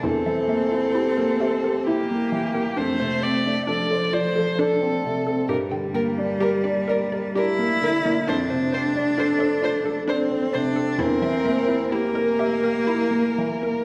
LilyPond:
<<
  \new Staff \with { instrumentName = "Violin" } { \time 3/4 \key d \minor \tempo 4 = 66 a'2 g'4 | c''8 d''8 d''8 c''8 a'4 | bes'8 bes'8 bes'8 bes'8 bes'8 bes'8 | c''8 c''8 c''8 c''8 c''8 c''8 |
bes'4 bes'2 | }
  \new Staff \with { instrumentName = "Synth pluck" } { \time 3/4 \key d \minor e'16 e''16 e''16 r16 e'16 bes'16 g'16 bes'16 e'16 r8 bes'16 | d'16 c''16 c''16 r16 d'16 a'16 f'16 a'16 d'16 r8 a'16 | g'16 g''16 g''16 r16 g'16 d''16 bes'16 d''16 g'16 r8 d''16 | d'16 c''16 c''16 r16 d'16 a'16 f'16 a'16 d'16 r8 a'16 |
e'16 e''16 e''16 r16 e'16 bes'16 g'16 bes'16 e'16 r8 bes'16 | }
  \new Staff \with { instrumentName = "Cello" } { \time 3/4 \key d \minor c'2 bes4 | a4 f4. r8 | g2 e'4 | d'2 c'8 d'8 |
c'4 bes2 | }
  \new Staff \with { instrumentName = "Felt piano" } { \time 3/4 \key d \minor e,16 e16 bes16 e'16 g'16 bes16 e''16 g'16 e'16 bes16 e16 bes16 | f,16 c16 c'16 d'16 a'16 c''16 d''16 a'16 d'16 c'16 c16 c'16 | g,16 d16 bes16 d'16 bes'16 d'16 d''16 bes'16 d'16 bes16 d16 bes16 | f,16 c16 c'16 d'16 a'16 c''16 d''16 a'16 d'16 c'16 c16 c'16 |
e,16 e16 bes16 e'16 g'16 bes'16 e''16 g'16 e'16 bes16 e16 bes16 | }
>>